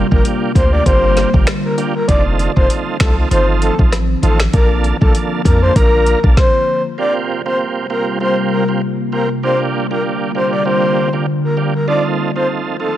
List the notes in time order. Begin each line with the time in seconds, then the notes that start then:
Already playing: D3 G3 A#3 F4
0.11 G1 A#3 D4 F4 G4 A#4, kick
0.25 closed hi-hat
0.55 D2 A#3 D4 F4 G4 C5, kick, closed hi-hat
0.73 D5
0.86 G1 A#3 D4 F4 G4 C5, kick, closed hi-hat
1.17 snare, closed hi-hat
1.34 G1 A#3 D4 F4 G4, kick
1.47 finger snap, cross-stick, snare, closed hi-hat
1.64 A#4
1.78 A#3 D4 F4 G4, closed hi-hat
1.95 A#4
2.08 F1 D#3 F3 C4 D#4 F4 A4 D5, kick, closed hi-hat
2.39 closed hi-hat
2.56 F1 C4 D#4 F4 A4 C5, kick
2.70 closed hi-hat
3.00 C2 C4 D#4 F4 A4, finger snap, kick, snare, closed hi-hat
3.31 G1 C4 D#4 F4 A4 C5, closed hi-hat
3.62 A4, closed hi-hat
3.78 A1 C4 D#4 F4 A4, kick
3.92 cross-stick, snare, closed hi-hat
4.23 A1 C4 D#4 F4 A4, closed hi-hat
4.40 finger snap, snare
4.53 A#1 D3 A#3 D4 F4 A4 A#4, kick, closed hi-hat
4.84 closed hi-hat
5.01 A#1 A#3 D4 F4 A4, kick
5.15 closed hi-hat
5.45 F2 A#3 D4 F4 A4 A#4, kick, closed hi-hat
5.63 C5
5.76 A#1 A#3 D4 F4 A#4, kick, closed hi-hat
6.06 closed hi-hat
6.23 A#1 A#3 D4 F4 A4, kick
6.37 C5, kick, snare
6.98 C3 G3 A#3 C4 F4 G4 D5
7.46 A#3 C4 F4 G4 C5
7.90 A#3 C4 F4 G4 A#4
8.20 A#3 C4 F4 G4 C5
8.52 A#4
8.68 A#3 C4 F4 G4
9.12 A#3 C4 F4 G4 A#4
9.43 D3 G3 A#3 D4 F4 G4 C5
9.91 A#3 D4 F4 G4 A#4
10.35 A#3 D4 F4 G4 C5
10.53 D5
10.65 A#3 D4 F4 G4 C5
11.13 A#3 D4 F4 G4
11.44 A#4
11.57 A#3 D4 F4 G4
11.74 A#4
11.88 D#3 F3 C4 D#4 F4 A4 D5
12.36 C4 D#4 F4 A4 C5
12.80 C4 D#4 F4 A4